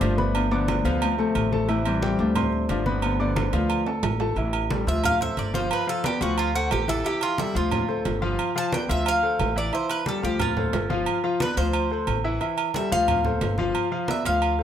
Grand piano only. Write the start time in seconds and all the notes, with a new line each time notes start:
0.01 F3 F4 F5
0.17 B3 B4 B5
0.51 D4 D5 D6
0.85 F3 F4 F5
1.18 A3 A4 A5
1.52 A3 A4 A5
1.68 E3 E4 E5
2.02 G3 G4 G5
2.35 C4 C5 C6
2.69 F3 F4 F5
2.86 B3 B4 B5
3.19 D4 D5 D6
3.53 F3 F4 F5
3.86 A3 A4 A5
4.20 A3 A4 A5
4.37 E3 E4 E5
4.71 G3 G4 A4
4.87 F3 F4 F5
5.20 A3 A4 C5
5.53 F3 F4 F5
5.87 F3 F4 F5
6.04 B3 B4 D5
6.20 F3 F4 F5
6.54 A3 A4 C5
6.88 E3 E4 E5
7.05 E3 E4 E5
7.38 G3 G4 A4
7.55 F3 F4 F5
7.88 A3 A4 C5
8.22 F3 F4 F5
8.55 F3 F4 F5
8.72 B3 B4 D5
8.89 F3 F4 F5
9.22 A3 A4 C5
9.56 E3 E4 E5
9.73 E3 E4 E5
10.06 G3 G4 A4
10.23 F3 F4 F5
10.57 A3 A4 C5
10.90 F3 F4 F5
11.23 F3 F4 F5
11.40 B3 B4 D5
11.57 F3 F4 F5
11.91 A3 A4 C5
12.24 E3 E4 E5
12.41 E3 E4 E5
12.75 G3 G4 A4
12.91 F3 F4 F5
13.25 A3 A4 C5
13.58 F3 F4 F5
13.91 F3 F4 F5
14.08 B3 B4 D5
14.25 F3 F4 F5
14.58 A3 A4 C5